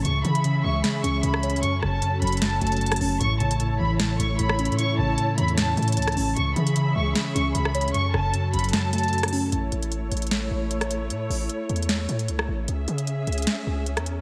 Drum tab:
HH |x-----------x-----x-----x-----------------------x-----------x-----------x-----------x---x---x---|x-----------------------x-----------x--x--x--x--x-----------x--x--x--x--x--x--x--x--o-----------|x-----------x-----x-----x-----------------------x-----------x-----------x-----------x---x---x---|x-----------------------x-----------x-----x-----x-----------x--x--x--x--x--x--x--x--o-----------|
SD |------------------------------------------------o-----------------------------r-----------------|------------r-----------------------------------o-----------------------------r-----------------|------------------------------------------------o-----------------------------r-----------------|------------------------------------------------o-----------------------------r-----------------|

HH |x-----------x-----x-----x-----------------------x-----------x-----------x-----------x---x---x---|x-----------------------x-----------x--x--x--x--x-----------x--x--x--x--x--x--x--x--o-----------|x-----------x-----x-----x-----------x--x--x--x--x-----------------------x-----x-----x-----------|x-----------o-----------x-----------x---x---x---x-----------x-----x-----x-----------------------|
SD |------------------------------------------------o-----------------------------r-----------------|------------r-----------------------------------o-----------------------------r-----------------|------------------------------------------------o-----------------------------r-----------------|------------------------------------------------o-----------------------------r-----------------|

HH |x-----------x-----x-----x-----------x--x--x--x--x-----------------------x-----x-----x-----------|
SD |------------------------------------------------o-----------------------------r-----------------|